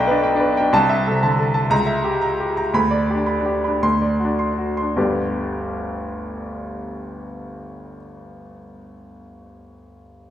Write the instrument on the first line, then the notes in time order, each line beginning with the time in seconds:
grand piano
Already playing: B1 D5 G5
0.07 D4 B4
0.23 G5
0.35 D4
0.40 B4
0.57 D4 G5
0.73 C2 A5
0.89 E5
1.07 A4
1.11 C3
1.23 D3 A5
1.39 A4
1.54 A5
1.70 C#2 A#5
1.86 E5
2.04 G4
2.22 A#5
2.40 G4
2.57 A#5
2.74 D2 B5
2.91 D5
3.10 G4
3.15 D4
3.26 B5
3.40 D4
3.46 G4
3.64 D4 B5
3.83 D2 C6
4.02 D5
4.20 F#4
4.25 D4
4.39 C6
4.53 D4
4.58 F#4
4.77 C6
4.82 D4
4.96 G1 D2 G3 B3 D4 G4